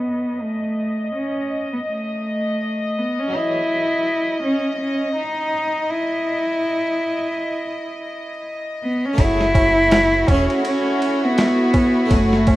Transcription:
Already playing: harpsichord F#2 E3 A3 C#4 G#4, cello B3, violin section D#5
0.41 cello A3
1.15 cello C#4
1.73 cello B3
1.89 cello A3
2.98 cello B3
3.19 cello C#4
3.28 harpsichord F#3 C#4
3.32 harpsichord E3 D#5, cello E4
3.37 harpsichord G#4
4.43 cello C#4
4.81 cello C#4
5.16 cello D#4
5.90 cello E4
8.83 cello B3
9.05 cello C#4
9.13 harpsichord A3 C#4
9.18 fingered electric bass F#1, violin section E4 F#4, harpsichord E4, cello E4, kick, ride, tabla na
9.23 harpsichord G#4
9.41 snare, tabla na
9.55 kick, ride, tabla na
9.76 tabla na
9.91 snare, ride, tabla na
10.13 tabla na
10.24 harpsichord A3 C#4, tabla na
10.28 fingered electric bass E1, cello C#4, harpsichord E4, kick, ride
10.33 harpsichord G#4
10.49 ride, tabla na
10.63 cello C#4, ride, tabla na
10.84 tabla na
10.99 ride, tabla na
11.22 cello B3, tabla na
11.36 snare, ride, tabla na
11.59 tabla na
11.74 kick, ride, tabla na
11.95 tabla na
12.06 harpsichord A3 C#4
12.10 fingered electric bass F#1, cello A3, harpsichord E4, kick, ride, tabla na
12.16 harpsichord G#4
12.33 snare
12.47 kick, ride, tabla na

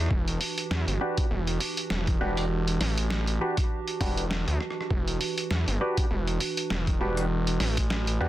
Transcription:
Already playing: ambient pad E3 D4 F#4 B4
0.00 cross-stick
0.06 ambient pad G4, cross-stick
0.11 analog synth bass E1, kick
0.28 closed hi-hat
0.41 open hi-hat
0.58 closed hi-hat
0.71 analog synth bass E2, snare
0.87 analog synth bass G1, closed hi-hat
1.01 clav D4 F#4 G4 B4
1.17 kick, closed hi-hat
1.31 analog synth bass E1
1.47 closed hi-hat
1.60 open hi-hat
1.77 closed hi-hat
1.90 analog synth bass E1, snare
2.07 kick, closed hi-hat
2.21 analog synth bass E1, clav D4 F#4 G4 B4
2.37 cross-stick, closed hi-hat
2.68 closed hi-hat
2.81 analog synth bass A1, cross-stick, snare, open hi-hat
2.98 closed hi-hat
3.10 snare
3.27 closed hi-hat
3.41 clav D4 F#4 G4 B4
3.57 kick, cross-stick, closed hi-hat
3.88 closed hi-hat
4.01 analog synth bass E1, clav D4 F#4 G4 B4, kick, open hi-hat
4.17 closed hi-hat
4.31 snare
4.48 analog synth bass D2, closed hi-hat
4.61 cross-stick
4.70 cross-stick
4.81 cross-stick
4.90 analog synth bass E1, ambient pad B4, kick
5.08 closed hi-hat
5.21 open hi-hat
5.38 closed hi-hat
5.51 analog synth bass E2, snare
5.68 analog synth bass G1, closed hi-hat
5.81 clav D4 F#4 G4 B4
5.97 kick, closed hi-hat
6.11 analog synth bass E1
6.27 closed hi-hat
6.40 open hi-hat
6.57 closed hi-hat
6.70 analog synth bass E1, snare
6.87 kick, closed hi-hat
7.01 analog synth bass E1, clav D4 F#4 G4 B4
7.17 cross-stick, closed hi-hat
7.47 closed hi-hat
7.60 analog synth bass A1, cross-stick, snare, open hi-hat
7.77 kick, closed hi-hat
7.90 snare
8.07 closed hi-hat
8.21 analog synth bass E2, clav D4 F#4 G4 B4

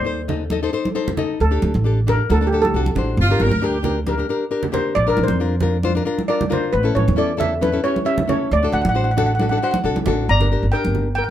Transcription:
Already playing: upright bass D#2, steel pan C5
0.04 nylon-string guitar D#4 A4 C5
0.28 nylon-string guitar D#4 A4 D#5, low conga
0.50 nylon-string guitar D#4 A4 D#5, high conga
0.63 nylon-string guitar D#4 A4 C5
0.73 nylon-string guitar D#4 A4 C5
0.85 high conga
0.95 nylon-string guitar D#4 A4 C5
1.08 high conga, low conga
1.17 nylon-string guitar D#4 A4 D#5, low conga
1.40 upright bass D2, steel pan A4
1.51 nylon-string guitar D4 G4 A4
1.62 upright bass D2, high conga
1.74 upright bass A1, high conga
1.84 nylon-string guitar D4 G4 A4
2.07 nylon-string guitar D4 G4 A4, steel pan A#4, low conga
2.29 upright bass D2, nylon-string guitar D4 F#4 A4, steel pan A4, high conga
2.41 nylon-string guitar D4 F#4 A4
2.47 steel pan G4
2.52 nylon-string guitar D4 F#4 A4
2.62 steel pan A4, high conga
2.74 upright bass C2, nylon-string guitar D4 F#4 A4
2.86 high conga
2.95 upright bass A1, nylon-string guitar D4 F#4 C5, low conga
3.17 upright bass G1, horn section F4
3.30 nylon-string guitar D4 G4 A#4
3.39 upright bass G1, horn section A#4, high conga
3.51 upright bass D2, high conga
3.62 nylon-string guitar D4 G4 A#4, horn section G4
3.83 nylon-string guitar D4 G4 A#4, low conga
4.07 nylon-string guitar D4 G4 A#4, steel pan A#4, high conga
4.18 nylon-string guitar D4 G4 A#4
4.29 nylon-string guitar D4 G4 A#4
4.51 nylon-string guitar D4 G4 A#4
4.63 low conga
4.72 nylon-string guitar D4 G4 A#4, steel pan C5, low conga
4.95 upright bass A#1, steel pan D5
5.07 nylon-string guitar D4 F4 A#4, steel pan A#4
5.17 upright bass A#1, high conga
5.24 steel pan C5
5.28 upright bass F2, high conga
5.40 nylon-string guitar D4 F4 A#4
5.60 nylon-string guitar D4 F4 A#4, low conga
5.83 nylon-string guitar D4 F4 C5, high conga
5.95 nylon-string guitar D4 F4 A#4
6.05 nylon-string guitar D4 F4 A#4
6.18 high conga
6.28 nylon-string guitar D4 F4 A#4, steel pan D5
6.41 high conga, low conga
6.50 nylon-string guitar D4 F4 A#4, steel pan C5, low conga
6.73 upright bass A1, steel pan B4
6.83 nylon-string guitar C#4 E4 A4
6.95 upright bass A1, steel pan C#5, high conga
7.08 upright bass E2, high conga
7.16 nylon-string guitar C#4 E4 A4, steel pan D5
7.37 nylon-string guitar C#4 E4 A4, steel pan E5, low conga
7.61 nylon-string guitar C#4 E4 A4, steel pan B4, high conga
7.72 nylon-string guitar C#4 E4 A4
7.84 nylon-string guitar C#4 E4 G4, steel pan C#5
7.96 high conga
8.05 nylon-string guitar C#4 E4 G4, steel pan E5
8.18 high conga, low conga
8.28 nylon-string guitar C#4 E4 A4, steel pan C#5, low conga
8.51 upright bass D2, steel pan D5
8.63 nylon-string guitar D4 F#4 A4
8.72 upright bass D2, steel pan F#5
8.82 upright bass A1, steel pan F#5, high conga
8.89 steel pan F#5
8.95 nylon-string guitar D4 F#4 C5, steel pan F#5
9.04 steel pan F#5
9.11 steel pan F#5
9.17 nylon-string guitar D4 F#4 A4, steel pan F#5, low conga
9.26 steel pan F#5
9.35 steel pan F#5
9.39 nylon-string guitar D4 F#4 A4, steel pan F#5, high conga
9.49 nylon-string guitar D4 F#4 A4, steel pan F#5
9.57 steel pan F#5
9.62 nylon-string guitar D4 F#4 C5, steel pan F#5
9.71 steel pan F#5, high conga
9.84 upright bass C2, nylon-string guitar D4 F#4 A4
9.96 high conga
10.06 upright bass A1, nylon-string guitar D4 F#4 A4, low conga
10.29 upright bass G1, steel pan D5 A#5
10.40 nylon-string guitar D4 G4 A#4, low conga
10.52 nylon-string guitar D4 G4 A#4
10.63 upright bass G1
10.72 nylon-string guitar D4 G4 A#4, steel pan A#4 G5
10.85 upright bass G1, high conga
10.95 low conga
11.15 steel pan A#4 G5
11.24 steel pan G5

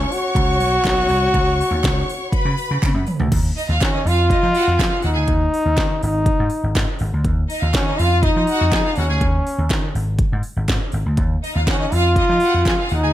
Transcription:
Already playing: trombone C#4, violin section C#5 C#6
0.12 trombone F#4, open hi-hat
0.35 slap bass C#2, kick, closed hi-hat
0.60 slap bass B1, open hi-hat
0.85 slap bass B1, kick, snare, clap, closed hi-hat
0.88 clap
1.09 slap bass C2, open hi-hat
1.34 slap bass C#2, kick, closed hi-hat
1.61 open hi-hat
1.71 slap bass D#2
1.84 slap bass C#2, kick, snare, clap, closed hi-hat
1.86 clap
2.09 open hi-hat
2.33 violin section B4 B5, kick, closed hi-hat
2.45 slap bass C#3
2.58 open hi-hat
2.71 slap bass C#3
2.83 slap bass C#3, kick, clap, closed hi-hat, high tom
2.94 slap bass F#2
3.07 mid tom, open hi-hat
3.20 slap bass D2, floor tom
3.32 slap bass D#2, kick, closed hi-hat, crash
3.56 violin section D#4 D#5, open hi-hat
3.68 slap bass D#2, violin section F4 F5
3.81 slap bass D#3, trombone C#4, violin section F#4 F#5, kick, snare, clap, closed hi-hat
3.83 clap
3.94 violin section D#4 D#5
4.05 slap bass F2, violin section F4 F5, trombone F4, open hi-hat
4.30 violin section D#4 D#5, kick, closed hi-hat
4.40 slap bass F3, violin section D#4 D#5
4.53 violin section F#4 F#5, open hi-hat
4.68 slap bass F2
4.77 slap bass F3, violin section G#4 G#5, kick, snare, clap, closed hi-hat
4.82 clap
4.88 violin section F4 F5
5.02 slap bass D#2, trombone D#4, violin section F#4 F#5, open hi-hat
5.13 slap bass D2, violin section G#4 G#5
5.28 slap bass D#2, kick, closed hi-hat
5.54 open hi-hat
5.66 slap bass D#2
5.77 slap bass D#3, kick, snare, clap, closed hi-hat
6.03 slap bass G#1, trombone D#4, open hi-hat
6.26 kick, closed hi-hat
6.39 slap bass G#2
6.50 open hi-hat
6.63 slap bass G#1
6.75 slap bass G#2, kick, snare, clap, closed hi-hat
6.99 slap bass G#1, open hi-hat
7.13 slap bass D2
7.25 slap bass D#2, kick, closed hi-hat
7.48 violin section D#4 D#5, open hi-hat
7.61 slap bass D#2, violin section F4 F5
7.74 slap bass D#3, trombone C#4, violin section F#4 F#5, kick, snare, clap, closed hi-hat
7.87 violin section D#4 D#5
7.99 slap bass F2, violin section F4 F5, trombone F4, open hi-hat
8.23 violin section D#4 D#5, trombone D#4, kick, closed hi-hat
8.36 slap bass F3, violin section D#4 D#5
8.47 violin section F#4 F#5, open hi-hat
8.61 slap bass F2
8.72 slap bass F3, violin section G#4 G#5, kick, snare, clap, closed hi-hat
8.74 clap
8.85 violin section F4 F5
8.96 slap bass D#2, trombone C#4, violin section F#4 F#5, open hi-hat
9.09 slap bass D2, violin section G#4 G#5
9.21 slap bass D#2, kick, closed hi-hat
9.47 open hi-hat
9.58 slap bass D#2
9.70 slap bass D#3, kick, snare, clap, closed hi-hat
9.72 clap
9.95 slap bass G#1, open hi-hat
10.19 kick, closed hi-hat
10.32 slap bass G#2
10.43 open hi-hat
10.56 slap bass G#1
10.68 slap bass G#2, kick, snare, clap, closed hi-hat
10.92 slap bass G#1, open hi-hat
11.06 slap bass D2
11.17 slap bass D#2, kick, closed hi-hat
11.42 violin section D#4 D#5, open hi-hat
11.55 slap bass D#2, violin section F4 F5
11.67 slap bass D#3, trombone C#4, violin section F#4 F#5, kick, snare, clap, closed hi-hat
11.80 violin section D#4 D#5
11.92 slap bass F2, violin section F4 F5, trombone F4, open hi-hat
12.16 violin section D#4 D#5, kick, closed hi-hat
12.29 slap bass F3, violin section D#4 D#5
12.40 violin section F#4 F#5, open hi-hat
12.54 slap bass F2
12.66 slap bass F3, violin section G#4 G#5, kick, snare, clap, closed hi-hat
12.68 clap
12.78 violin section F4 F5
12.84 trombone F4
12.89 slap bass D#2, violin section F#4 F#5, open hi-hat
12.94 trombone D#4
13.03 slap bass D2, violin section G#4 G#5

